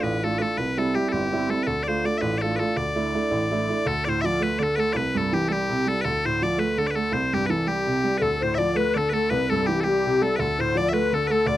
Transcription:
Already playing: grand piano A3 D4 F4
0.00 grand piano A1, bagpipes B4 C5
0.23 grand piano A3 D4 F4, bagpipes A4
0.38 grand piano A3 D4 F4, bagpipes A4 B4
0.57 grand piano C2, bagpipes B4
0.78 grand piano G3 C4 E4, bagpipes A4
0.95 grand piano G3 C4 E4, bagpipes G4
1.09 bagpipes G4 A4
1.13 grand piano G1
1.32 grand piano G3 C4 E4
1.49 grand piano G3 C4 E4, bagpipes A4
1.63 grand piano D2, bagpipes A4 B4
1.83 grand piano D4, bagpipes D5
1.87 grand piano A3 F4, bagpipes C5
2.04 grand piano A3 D4 F4, bagpipes D5
2.18 grand piano A1, bagpipes B4 E5
2.38 bagpipes A4 D5
2.42 grand piano A3 D4 F4
2.56 grand piano A3 D4, bagpipes A4 B4
2.60 grand piano F4
2.77 grand piano D2, bagpipes D5
2.95 grand piano A3 D4 E4
3.14 grand piano A3 D4 E4
3.31 grand piano A1
3.51 grand piano A3 D4 E4
3.68 grand piano A3 D4 E4
3.86 grand piano D2, bagpipes A4
4.05 grand piano A2, bagpipes C5 D5
4.21 grand piano F3, bagpipes E5
4.26 bagpipes D5
4.40 grand piano A3, bagpipes B4
4.59 grand piano D3, bagpipes D5
4.63 bagpipes A4
4.76 grand piano A3, bagpipes A4 B4
4.93 grand piano C2, bagpipes B4 D5
5.15 grand piano G2, bagpipes A4
5.33 grand piano E3, bagpipes G4
5.48 grand piano G3, bagpipes G4 A4
5.70 grand piano C3
5.86 grand piano G3, bagpipes A4
6.01 grand piano D2, bagpipes A4 B4
6.25 grand piano A2, bagpipes C5
6.42 grand piano F3, bagpipes D5
6.58 grand piano A3, bagpipes B4
6.78 grand piano D3, bagpipes A4
6.87 bagpipes B4 D5
6.95 grand piano A3, bagpipes A4
7.12 grand piano C2, bagpipes C5
7.33 grand piano G2, bagpipes G4
7.46 grand piano E3, bagpipes B4
7.50 bagpipes A4
7.67 grand piano G3, bagpipes G4
7.87 grand piano C3
8.04 grand piano G3
8.18 grand piano D2, flute A4, bagpipes B4
8.22 bagpipes A4
8.40 grand piano A2, flute C5, bagpipes C5
8.55 grand piano F3, flute D5, bagpipes D5 E5
8.75 grand piano A3, flute B4, bagpipes B4
8.94 grand piano D3, flute A4, bagpipes A4 D5
9.09 grand piano A3, bagpipes A4 B4
9.14 flute A4
9.30 grand piano C2, bagpipes B4, flute B4
9.50 grand piano G2, bagpipes A4, flute A4
9.66 grand piano E3, bagpipes G4, flute G4
9.80 bagpipes G4 A4
9.85 grand piano G3, flute G4
10.06 grand piano C3
10.22 grand piano G3, flute A4, bagpipes A4
10.36 grand piano D2, bagpipes A4 B4, flute A4
10.59 grand piano A2, flute C5, bagpipes C5
10.75 grand piano F3, flute D5, bagpipes D5
10.89 grand piano A3, bagpipes E5
10.93 bagpipes B4, flute B4
11.13 grand piano D3, bagpipes A4, flute A4
11.27 grand piano A3, bagpipes B4
11.31 bagpipes A4, flute A4
11.46 grand piano D2, bagpipes D5, flute D5

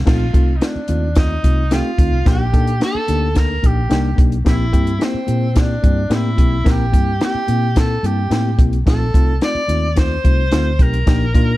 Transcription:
0.05 fingered electric bass A#1, reed electric piano A3 C4 D#4 F4, tenor saxophone F4, kick, snare, crash
0.33 fingered electric bass C2, reed electric piano A3 C4 D#4 F4, kick, closed hi-hat
0.57 reed electric piano A3, tenor saxophone D#4
0.61 reed electric piano C4 D#4 F4, tenor saxophone D4, snare, closed hi-hat
0.76 muted fingered electric bass stroke
0.88 fingered electric bass D#2, reed electric piano A3 C4 D#4 F4, closed hi-hat
1.15 reed electric piano A3 C4 D#4 F4, tenor saxophone D#4, kick, snare, closed hi-hat
1.43 fingered electric bass C2, reed electric piano A3 C4 D#4 F4, kick, closed hi-hat
1.71 reed electric piano A3 C4 D#4 G4, tenor saxophone F4, snare, closed hi-hat
1.98 fingered electric bass D2, reed electric piano A3 C4 D#4 F4, kick, closed hi-hat
2.12 fingered electric bass C2
2.25 fingered electric bass A#1, reed electric piano A#3 D4 D#4 G4, tenor saxophone G4, kick, snare, closed hi-hat
2.53 fingered electric bass A#2, reed electric piano A#3 D4 D#4 A4, kick, closed hi-hat
2.67 closed hi-hat
2.80 reed electric piano A#3 D4 D#4 G4, tenor saxophone A4, snare, closed hi-hat
2.95 muted fingered electric bass stroke
3.08 fingered electric bass D2, reed electric piano A#3 D4 D#4 G4, closed hi-hat
3.35 reed electric piano A#3 D4 D#4 A4, tenor saxophone A#4, kick, snare, closed hi-hat
3.62 fingered electric bass A#1, reed electric piano A#3 D4 D#4 G4, kick, closed hi-hat
3.67 tenor saxophone G4
3.90 fingered electric bass C2, reed electric piano A#3 D4 D#4 G4, snare, closed hi-hat
4.16 fingered electric bass B1, reed electric piano A#3 D4 D#4 G4, kick, closed hi-hat
4.32 closed hi-hat
4.45 fingered electric bass A#1, reed electric piano A#3 C4 E4 G4, tenor saxophone E4, kick, snare, closed hi-hat
4.72 fingered electric bass G2, reed electric piano A#3 C4 E4 G4, kick, closed hi-hat
4.87 closed hi-hat
4.99 reed electric piano A#3 C4 E4 G4, snare, closed hi-hat
5.04 tenor saxophone C4
5.14 muted fingered electric bass stroke
5.27 fingered electric bass A#2, reed electric piano A#3 C4 E4 G4, closed hi-hat
5.54 reed electric piano A#3 C4 E4 G4, kick, snare, closed hi-hat
5.60 tenor saxophone D4
5.82 fingered electric bass G2, reed electric piano A#3 C4 E4 G4, kick, closed hi-hat
6.10 fingered electric bass A2, reed electric piano A#3 C4 E4 G4, snare, closed hi-hat
6.15 tenor saxophone E4
6.37 fingered electric bass B1, reed electric piano A#3 C4 E4 G4, kick, closed hi-hat
6.64 fingered electric bass A#1, reed electric piano A#3 C4 E4 A#4, kick, snare, closed hi-hat
6.70 tenor saxophone G4
6.92 fingered electric bass G2, reed electric piano A#3 C4 E4 G4, kick, closed hi-hat
7.20 reed electric piano A#3 C4 E4 G4, snare, closed hi-hat
7.24 tenor saxophone G4
7.34 muted fingered electric bass stroke
7.47 fingered electric bass A#2, reed electric piano A#3 C4 E4 G4, closed hi-hat
7.75 reed electric piano A#3 C4 E4 A4, kick, snare, closed hi-hat
7.79 tenor saxophone A4
8.03 fingered electric bass G2, reed electric piano A#3 C4 E4 G4, tenor saxophone G4, closed hi-hat
8.30 fingered electric bass A2, reed electric piano A#3 C4 E4 G4, snare, closed hi-hat
8.58 fingered electric bass B1, reed electric piano A#3 C4 E4 G4, kick, closed hi-hat
8.73 closed hi-hat
8.86 fingered electric bass A#1, reed electric piano A3 C4 D#4 F4, tenor saxophone A4, kick, snare, closed hi-hat
9.14 fingered electric bass C2, reed electric piano A3 C4 D#4 F4, kick, closed hi-hat
9.41 reed electric piano A3 C4 D#4 F4, tenor saxophone D5, snare, closed hi-hat
9.55 muted fingered electric bass stroke
9.68 fingered electric bass D#2, reed electric piano A3 C4 D#4 F4, closed hi-hat
9.95 reed electric piano A3 C4 D#4 F4, tenor saxophone C5, kick, snare, closed hi-hat
10.24 fingered electric bass C2, reed electric piano A3 C4 D#4 F4, kick, closed hi-hat
10.51 fingered electric bass D2, reed electric piano A3 C4 D#4 F4, snare, closed hi-hat
10.79 fingered electric bass B1, reed electric piano A3 C4 D#4 G4, tenor saxophone A#4, kick, closed hi-hat
10.94 closed hi-hat
11.06 fingered electric bass A#1, reed electric piano A#3 D4 D#4 G4, kick, snare, closed hi-hat
11.34 fingered electric bass A#2, reed electric piano A#3 D4 D#4 F4, kick, closed hi-hat

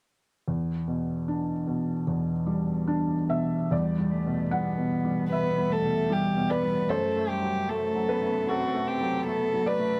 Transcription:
0.48 felt piano E2
0.88 felt piano B2
1.28 felt piano D4
1.67 felt piano B2
2.07 felt piano E2
2.46 felt piano G3
2.87 felt piano D4
3.29 felt piano B2 E5
3.71 felt piano E2 D5, cello G3
3.98 felt piano G3
4.12 cello A3
4.26 felt piano B2
4.51 felt piano G3 F#5, cello B3
4.78 felt piano B2
5.05 felt piano G3
5.29 felt piano B2 E5, cello B3, violin B4
5.58 felt piano G3
5.70 cello A3, violin A4
5.84 felt piano B2
6.10 felt piano G3, cello G3, violin G4
6.37 felt piano B2
6.49 cello B3, violin B4, felt piano D5
6.63 felt piano G3
6.89 felt piano F#2 C5, cello A3, violin A4
7.16 felt piano A3
7.28 cello G3, violin G4
7.42 felt piano F#3
7.67 cello A3, felt piano A3, violin A4
7.95 felt piano F#3
8.07 cello B3, felt piano B4
8.20 felt piano A3
8.46 felt piano F#3 A4, cello C4, violin F#4
8.74 felt piano A3
8.86 cello C4, violin G4
9.01 felt piano F#3
9.24 felt piano A3, cello B3, violin A4
9.54 felt piano F#3
9.64 cello A3, violin B4, felt piano D5
9.79 felt piano A3

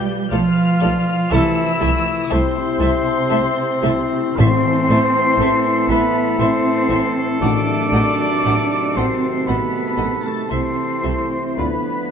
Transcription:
Already playing: harp B2 A3 B3 F4 A4 B4 D5 F5, cello section G3, violin section G6
0.05 harp D6
0.31 double bass section B1, cello section F3, viola section A3 F4, cor anglais F4, violin section A4 D5 F6, harp F5, flute F5
0.56 harp B4
0.81 double bass section B1, viola section A3 F4, violin section A4 D5, harp D5
1.07 harp F4
1.31 double bass section C2, trombone section C3 E3, harp C3, cello section E3, viola section A3 E4, french horn section A3 E4, cor anglais E4, violin section A4 E5 E6, trumpet A4, flute E5
1.57 harp C4
1.80 double bass section C2, harp A3, viola section A3 E4, violin section A4 E5
2.06 harp E4
2.30 double bass section C2, cello section C3, viola section A3 E4, cor anglais C4, violin section A4 E5 C6, harp A4, flute C5
2.55 harp E4
2.80 double bass section C2, viola section A3 E4, violin section A4 E5, harp E5
3.06 harp A5
3.30 double bass section C2, viola section A3 E4, violin section A4 E5, harp E5
3.56 harp A4
3.83 double bass section C2, viola section A3 E4, harp E4, violin section A4 E5
4.12 harp A3
4.36 double bass section A1, trombone section A2 E3, timpani A2, harp A2, french horn section A3 E4, viola section A3 E4, cello section C4, trumpet A4, violin section A4 E5 C7, cor anglais C5, flute C6
4.65 harp E3
4.89 double bass section A1, viola section A3 E4, harp A3, violin section A4 E5
5.14 harp E4
5.38 double bass section A1, viola section A3 E4, harp A4, violin section A4 E5
5.65 harp E4
5.89 double bass section A1, viola section A3 E4, cello section B3, violin section A4 E5 B6, cor anglais B4, harp E5, flute B5
6.14 harp A5
6.39 double bass section A1, viola section A3 E4, cello section C4, violin section A4 E5 C7, cor anglais C5, harp E5, flute C6
6.65 harp A4
6.89 double bass section A1, viola section A3 E4, harp E4, violin section A4 E5
7.17 harp A3
7.40 double bass section A1, harp A2, timpani A2, trombone section C3 D#3, viola section A3 D#4, cello section D4, french horn section F#4, violin section A4 F#5 D7, cor anglais D5, flute D6
7.68 harp F#3
7.92 double bass section A1, viola section A3 D#4, harp A3, violin section A4 F#5
8.19 harp F#4
8.45 double bass section A1, viola section A3 D#4, harp A4, violin section A4 F#5
8.72 harp F#4
8.96 double bass section A1, viola section A3 D#4, cello section C4, violin section A4 F#5 C7, cor anglais C5, harp F#5, flute C6
9.23 harp A5
9.47 double bass section A1, viola section A3 D#4, cello section B3, violin section A4 F#5 B6, cor anglais B4, harp F#5, flute B5
9.74 harp A4
9.97 double bass section A1, viola section A3 D#4, harp F#4, violin section A4 F#5
10.23 cello section A3, harp A3, cor anglais A4, flute A5, violin section A6
10.49 double bass section C2, harp C3, trombone section E3, viola section A3 E4, french horn section A3 E4, cello section C4, violin section A4 E5 C7, trumpet A4, cor anglais C5, flute C6
10.77 harp C4
11.03 double bass section C2, viola section A3 E4, harp A3, violin section A4 E5
11.31 harp E4
11.52 violin section C7
11.56 double bass section D2, harp D3, trombone section D3 F3, viola section A3 F4, cello section B3, french horn section D4, violin section B4 D5 B6, trumpet B4, cor anglais B4, flute B5
11.85 harp D4

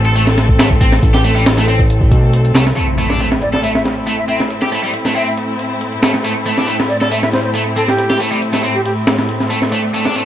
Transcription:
Already playing: analog synth bass A1, string section A3 C4 A4
0.05 overdriven electric guitar A4
0.16 overdriven electric guitar A3, closed hi-hat
0.27 snare
0.38 snare, closed hi-hat
0.49 kick
0.59 overdriven electric guitar A3, snare, closed hi-hat
0.71 kick
0.81 overdriven electric guitar C4, kick, closed hi-hat
0.92 snare
1.03 analog synth bass A1, kick, closed hi-hat
1.14 overdriven electric guitar G4, snare
1.24 overdriven electric guitar A3, closed hi-hat
1.36 overdriven electric guitar G3
1.46 snare, closed hi-hat
1.58 overdriven electric guitar A3, snare
1.68 overdriven electric guitar C4, open hi-hat
1.80 kick
1.90 closed hi-hat
2.01 kick
2.11 analog synth bass B1, kick, closed hi-hat
2.33 closed hi-hat
2.45 closed hi-hat
2.55 analog synth bass C2, overdriven electric guitar A3, snare, closed hi-hat
2.67 snare
2.76 string section A2 A3 C4 E4, overdriven electric guitar A3, closed hi-hat, impact
2.98 overdriven electric guitar A3, closed hi-hat
3.09 overdriven electric guitar D4, snare
3.20 overdriven electric guitar A3, closed hi-hat
3.32 snare
3.42 flute D5, closed hi-hat
3.53 overdriven electric guitar A4, flute D5, snare
3.63 overdriven electric guitar A3, flute E5, closed hi-hat
3.75 flute E5, snare
3.85 snare, closed hi-hat
4.07 overdriven electric guitar A3, closed hi-hat
4.18 flute E5
4.28 overdriven electric guitar C4, flute E5, closed hi-hat
4.40 snare
4.50 closed hi-hat
4.62 overdriven electric guitar G4, snare
4.72 overdriven electric guitar A3, closed hi-hat
4.83 overdriven electric guitar G3
4.94 closed hi-hat
5.05 overdriven electric guitar A3, snare
5.15 overdriven electric guitar C4, flute E5, open hi-hat
5.27 flute E5
5.37 closed hi-hat
5.59 closed hi-hat
5.81 closed hi-hat
5.92 closed hi-hat
6.03 overdriven electric guitar A3, snare, closed hi-hat
6.14 snare
6.24 overdriven electric guitar A3, closed hi-hat
6.46 overdriven electric guitar A3, closed hi-hat
6.57 overdriven electric guitar D4, snare
6.68 overdriven electric guitar A3, closed hi-hat
6.80 snare
6.89 flute D5, closed hi-hat
7.01 overdriven electric guitar A4, flute D5, snare
7.11 overdriven electric guitar A3, flute E5, closed hi-hat
7.22 flute E5, snare
7.33 flute C5, snare, closed hi-hat
7.44 flute C5
7.55 overdriven electric guitar A3, closed hi-hat
7.76 overdriven electric guitar C4, flute A4, closed hi-hat
7.87 flute G4, snare
7.98 closed hi-hat
8.10 overdriven electric guitar G4, snare
8.20 overdriven electric guitar A3, closed hi-hat
8.31 overdriven electric guitar G3
8.42 closed hi-hat
8.53 overdriven electric guitar A3, snare
8.63 overdriven electric guitar C4, open hi-hat
8.74 flute G4
8.85 flute G4, closed hi-hat
9.07 snare, closed hi-hat
9.18 snare
9.29 closed hi-hat
9.40 snare
9.50 overdriven electric guitar A3, closed hi-hat
9.62 snare
9.72 overdriven electric guitar A3, string section D4, closed hi-hat
9.94 overdriven electric guitar A3, closed hi-hat
10.05 overdriven electric guitar D4, snare
10.15 overdriven electric guitar A3, closed hi-hat

